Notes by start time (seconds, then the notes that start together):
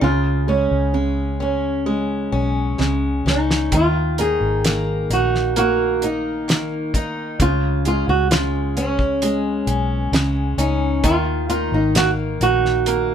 Already playing: A#3 D#4
0.01 C#2 C#3 F4
0.47 G#3 C#4
0.71 C#2
0.93 C#3 G#3
1.40 C#4
1.86 G#3
2.32 B1 C#4
2.79 C#2 C#3 G#3, snare
3.25 C#2 C#4 D#4, snare
3.51 snare
3.72 D#2 D#3 F4, kick, closed hi-hat
4.18 A#3 D#4 G#4, closed hi-hat
4.41 G#1
4.64 D#3 A#3, snare, closed hi-hat
5.10 A#1 D#4 F#4, closed hi-hat
5.35 snare
5.56 A#3 F#4, closed hi-hat
6.02 D#4, closed hi-hat
6.48 D#3 A#3, snare, closed hi-hat
6.94 D#4, kick, closed hi-hat
7.40 C#2 C#3 F4, kick, closed hi-hat
7.85 G#3 C#4 F4, closed hi-hat
8.08 C#2 F#4
8.31 C#3 G#3 F4, snare, closed hi-hat
8.77 C#4, closed hi-hat
8.99 kick
9.22 G#3, closed hi-hat
9.67 B1 C#4, closed hi-hat
9.99 B3
10.12 C#2 C#3 G#3, snare, closed hi-hat
10.57 C#2 C#4 D#4, closed hi-hat
11.03 D#2 D#3 F4, kick, closed hi-hat
11.49 A#3 D#4 F4, closed hi-hat
11.72 G#1 D#4
11.95 D#3 A#3 F#4, snare, closed hi-hat
12.41 A#1 D#4 F#4, closed hi-hat
12.65 snare
12.86 A#3, closed hi-hat